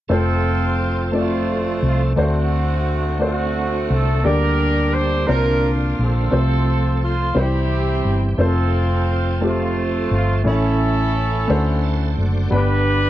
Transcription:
0.08 1.79 F1 medium
0.08 2.13 F3 soft
0.08 2.13 A3 soft
0.08 0.87 A3 medium
0.08 2.13 C4 soft
0.08 0.87 C4 soft
0.08 1.11 C4 medium
0.08 0.88 F4 medium
0.08 1.11 F4 medium
0.08 2.13 A4 medium
0.08 0.76 A4 medium
0.08 0.88 C5 medium
1.12 1.90 A3 soft
1.12 1.91 C4 soft
1.12 1.91 F4 soft
1.12 1.91 D5 medium
1.16 2.15 A3 soft
1.16 2.15 C4 soft
1.16 1.81 F4 medium
1.83 2.15 C2 medium
1.87 2.02 F4 medium
2.16 3.86 D2 medium
2.16 4.20 D3 soft
2.16 3.17 D3 soft
2.16 2.94 A3 medium
2.16 4.20 A3 soft
2.16 3.19 A3 medium
2.16 4.21 C4 soft
2.16 3.18 C4 soft
2.16 2.94 D4 medium
2.16 4.20 F#4 soft
2.16 2.95 F#4 medium
2.16 2.95 C5 medium
2.21 3.19 F#4 medium
3.19 3.97 A3 soft
3.19 3.98 D4 soft
3.19 3.98 F#4 soft
3.19 3.99 C5 soft
3.24 4.22 A3 medium
3.24 4.23 C4 medium
3.24 3.89 F#4 medium
3.90 4.22 C2 medium
3.90 4.26 A4 medium
4.23 5.25 D2 medium
4.23 5.24 D3 soft
4.23 5.27 D3 soft
4.23 5.29 G3 soft
4.23 5.01 A#3 medium
4.23 5.28 A#3 soft
4.23 5.02 D4 soft
4.23 5.24 D4 medium
4.23 5.24 G4 medium
4.23 5.02 G4 medium
4.23 5.29 G4 medium
4.23 4.94 A#4 medium
4.23 5.03 D5 medium
4.92 5.28 C5 medium
5.26 5.94 C2 medium
5.26 6.27 C3 soft
5.26 6.32 D3 soft
5.26 6.05 A#3 soft
5.26 6.32 A#3 soft
5.26 6.31 C4 soft
5.26 6.05 D4 soft
5.26 6.28 D4 medium
5.26 5.98 F4 medium
5.26 6.05 F4 soft
5.26 6.32 F4 soft
5.26 5.70 A#4 medium
5.26 6.06 C5 medium
5.99 6.30 A#1 medium
5.99 6.99 C4 medium
5.99 6.98 F4 medium
5.99 6.98 A4 medium
6.30 7.32 C2 medium
6.30 7.32 C3 soft
6.30 7.36 F3 soft
6.30 7.08 A3 soft
6.30 7.36 A3 soft
6.30 7.09 C4 soft
6.30 7.35 C4 soft
6.30 7.09 F4 medium
6.30 6.39 G#4 soft
6.30 7.10 C5 medium
6.39 7.39 A4 medium
7.03 7.37 F4 medium
7.34 8.01 C2 medium
7.34 8.35 C3 soft
7.34 8.39 E3 soft
7.34 8.12 G3 soft
7.34 8.39 G3 soft
7.34 8.12 C4 soft
7.34 8.38 C4 soft
7.34 8.13 E4 soft
7.34 8.25 E4 medium
7.34 8.39 G4 soft
7.34 8.13 C5 medium
7.38 8.25 C4 medium
7.38 8.15 G4 medium
8.05 8.37 G1 medium
8.38 10.07 F1 medium
8.38 10.42 F3 soft
8.38 9.16 A3 medium
8.38 10.42 A3 soft
8.38 9.16 C4 medium
8.38 10.42 C4 soft
8.38 9.16 F4 soft
8.38 10.42 A4 medium
8.38 9.17 C5 medium
8.42 9.41 C4 soft
8.42 9.41 F4 soft
8.42 9.06 A4 medium
9.41 10.19 A3 soft
9.41 10.19 C4 soft
9.41 10.20 F4 soft
9.41 10.20 G4 medium
9.47 10.44 A3 medium
9.47 10.44 C4 soft
9.47 10.10 F4 medium
10.11 10.43 G1 medium
10.11 10.45 F4 medium
10.44 11.45 A1 medium
10.44 11.45 A2 soft
10.44 11.50 E3 soft
10.44 11.22 A3 medium
10.44 11.49 A3 soft
10.44 10.53 A#3 soft
10.44 11.22 C#4 medium
10.44 11.23 E4 medium
10.44 11.50 A4 medium
10.44 11.23 C#5 medium
10.49 12.16 C#4 medium
10.49 12.16 E4 medium
10.49 12.20 A4 medium
10.54 11.53 C#4 soft
11.48 12.14 D2 medium
11.48 12.48 D3 soft
11.48 12.51 D3 medium
11.48 12.25 A3 medium
11.48 12.53 A3 medium
11.48 12.26 F#4 medium
11.48 12.53 F#4 medium
11.48 12.53 C5 soft
11.48 12.27 C5 medium
11.84 12.16 A5 medium
12.18 12.50 F#1 medium
12.18 12.50 D5 medium
12.50 13.10 G1 medium
12.50 13.10 G2 soft
12.50 13.10 D3 soft
12.50 13.10 G3 medium
12.50 13.10 G3 soft
12.50 13.10 B3 medium
12.50 13.10 B3 soft
12.50 13.10 D4 medium
12.50 13.10 G4 medium
12.50 13.10 B4 medium
12.55 13.10 D4 medium
12.55 13.10 G4 medium
12.55 13.10 B4 loud

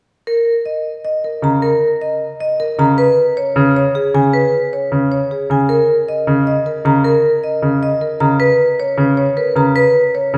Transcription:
0.27 0.52 A#4 medium
0.66 0.91 D#5 soft
1.05 1.30 D#5 medium
1.24 1.49 A#4 soft
1.42 1.68 C#3 medium
1.42 1.69 A#5 medium
1.62 1.88 A#4 medium
2.02 2.27 D#5 medium
2.40 2.65 D#5 medium
2.60 2.85 A#4 medium
2.78 3.04 C#3 medium
2.78 3.04 A#5 medium
2.98 3.23 B4 medium
3.37 3.62 C#5 medium
3.56 3.81 C#3 medium
3.77 4.01 C#5 medium
3.95 4.20 G#4 medium
4.14 4.39 C#3 medium
4.14 4.40 G#5 medium
4.33 4.59 B4 medium
4.73 4.98 C#5 medium
4.92 5.17 C#3 medium
5.12 5.36 C#5 medium
5.31 5.56 G#4 soft
5.50 5.75 C#3 medium
5.50 5.75 G#5 medium
5.69 5.94 A#4 medium
6.08 6.33 D#5 medium
6.27 6.52 C#3 medium
6.47 6.72 D#5 medium
6.66 6.91 A#4 soft
6.85 7.10 C#3 medium
6.85 7.11 A#5 medium
7.04 7.30 A#4 medium
7.44 7.69 D#5 medium
7.62 7.88 C#3 medium
7.83 8.07 D#5 medium
8.01 8.27 A#4 soft
8.20 8.46 C#3 medium
8.20 8.46 A#5 medium
8.40 8.65 B4 medium
8.80 9.04 C#5 medium
8.97 9.23 C#3 medium
9.17 9.43 C#5 medium
9.37 9.62 A#4 medium
9.37 9.62 B4 soft
9.56 9.81 C#3 medium
9.56 9.82 A#5 medium
9.76 10.01 B4 medium
10.15 10.38 C#5 medium
10.34 10.38 C#3 medium

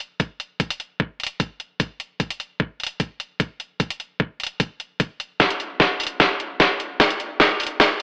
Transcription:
0.20 kick medium
0.20 closed hi-hat medium
0.40 closed hi-hat medium
0.60 kick loud
0.60 closed hi-hat medium
0.70 closed hi-hat medium
0.80 closed hi-hat medium
1.00 kick loud
1.20 closed hi-hat soft
1.23 closed hi-hat medium
1.27 closed hi-hat medium
1.40 kick loud
1.40 closed hi-hat medium
1.60 closed hi-hat medium
1.80 kick loud
1.80 closed hi-hat medium
2.00 closed hi-hat medium
2.20 kick medium
2.20 closed hi-hat medium
2.30 closed hi-hat medium
2.40 closed hi-hat soft
2.60 kick loud
2.80 closed hi-hat soft
2.83 closed hi-hat medium
2.87 closed hi-hat medium
3.00 kick medium
3.00 closed hi-hat medium
3.20 closed hi-hat medium
3.40 kick medium
3.40 closed hi-hat medium
3.60 closed hi-hat medium
3.80 kick loud
3.80 closed hi-hat medium
3.90 closed hi-hat medium
4.00 closed hi-hat soft
4.20 kick loud
4.40 closed hi-hat soft
4.43 closed hi-hat medium
4.47 closed hi-hat medium
4.60 kick loud
4.60 closed hi-hat medium
4.80 closed hi-hat medium
5.00 kick loud
5.00 closed hi-hat medium
5.20 closed hi-hat medium
5.40 kick loud
5.40 snare soft
5.40 closed hi-hat medium
5.50 closed hi-hat medium
5.60 closed hi-hat soft
5.80 kick loud
5.80 snare medium
6.00 closed hi-hat medium
6.00 open hi-hat medium
6.07 closed hi-hat medium
6.20 kick loud
6.20 snare medium
6.20 closed hi-hat medium
6.40 closed hi-hat medium
6.60 kick medium
6.60 snare medium
6.60 closed hi-hat medium
6.80 closed hi-hat soft
7.00 kick medium
7.00 snare medium
7.00 closed hi-hat medium
7.10 closed hi-hat medium
7.20 closed hi-hat soft
7.40 kick loud
7.40 snare medium
7.60 closed hi-hat medium
7.60 open hi-hat medium
7.67 closed hi-hat medium
7.80 kick loud
7.80 snare medium
7.80 closed hi-hat medium

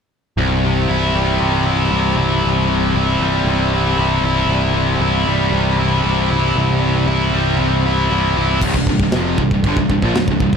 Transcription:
0.37 0.86 C1 medium
0.37 2.42 C2 medium
0.64 1.39 C3 medium
0.89 1.12 C1 medium
0.89 1.65 E4 medium
1.13 1.39 C1 medium
1.13 3.22 G3 medium
1.40 1.89 C1 medium
1.40 1.91 C3 medium
1.66 2.17 E4 medium
1.91 2.16 C1 medium
1.91 2.68 C3 medium
2.17 2.42 C1 medium
2.17 2.95 E4 medium
2.42 2.93 C1 medium
2.42 4.49 C2 medium
2.69 3.48 C3 medium
2.94 3.19 C1 medium
2.94 3.73 E4 medium
3.20 3.44 C1 medium
3.20 5.27 G3 medium
3.44 3.95 C1 medium
3.44 3.99 C3 medium
3.74 4.25 E4 medium
3.97 4.21 C1 medium
3.97 4.74 C3 medium
4.21 4.46 C1 medium
4.25 5.01 E4 medium
4.47 4.97 C1 medium
4.47 6.57 C2 medium
4.75 5.53 C3 medium
5.00 5.25 C1 medium
5.00 5.79 E4 medium
5.26 5.51 C1 medium
5.26 7.33 G3 medium
5.52 6.02 C1 medium
5.52 6.04 C3 medium
5.79 6.30 E4 medium
6.04 6.29 C1 medium
6.04 6.80 C3 medium
6.30 6.55 C1 medium
6.30 7.06 E4 medium
6.56 7.05 C1 medium
6.56 7.85 C2 medium
6.82 7.58 C3 medium
7.06 7.31 C1 medium
7.06 7.85 E4 medium
7.33 7.57 C1 medium
7.33 8.62 G3 medium
7.59 8.08 C1 medium
7.59 8.10 C3 medium
7.86 8.36 E4 medium
8.10 8.34 C1 medium
8.10 8.62 C3 medium
8.36 8.60 C1 medium
8.36 8.62 E4 medium
8.61 8.73 C1 medium
8.61 8.74 C2 medium
8.61 8.75 G2 loud
8.61 kick loud
8.61 crash loud
8.61 china medium
8.73 8.86 C1 medium
8.73 8.88 C2 medium
8.73 8.88 G2 medium
8.73 kick medium
8.86 8.98 C1 medium
8.86 9.01 C2 medium
8.86 9.01 G2 medium
8.86 kick medium
8.99 9.12 C1 medium
8.99 9.14 C2 medium
8.99 9.14 G2 medium
8.99 kick medium
9.12 9.37 F1 medium
9.12 9.39 F2 loud
9.12 snare loud
9.12 china medium
9.16 9.39 C3 medium
9.16 9.40 F3 loud
9.38 9.50 C1 medium
9.38 9.52 C2 medium
9.38 9.53 G2 medium
9.38 kick medium
9.51 9.63 C1 medium
9.51 9.65 C2 medium
9.51 9.65 G2 medium
9.51 kick medium
9.63 9.76 G1 medium
9.63 9.77 G2 medium
9.63 9.78 D3 loud
9.63 kick loud
9.63 china medium
9.76 9.89 C1 medium
9.76 9.90 C2 medium
9.76 9.91 G2 medium
9.76 kick medium
9.90 10.02 C1 medium
9.90 10.03 C2 medium
9.90 10.04 G2 medium
9.90 kick medium
10.02 10.13 A#1 medium
10.02 10.15 A#2 medium
10.02 10.16 F3 medium
10.02 kick medium
10.14 10.27 C1 medium
10.14 10.29 C2 medium
10.14 10.29 G2 medium
10.14 snare loud
10.14 china medium
10.28 10.39 C1 medium
10.28 10.41 C2 medium
10.28 10.41 G2 medium
10.28 kick medium
10.40 10.52 C1 medium
10.40 10.55 C2 medium
10.40 10.55 G2 medium
10.40 kick medium
10.53 10.57 G#1 loud
10.53 kick medium

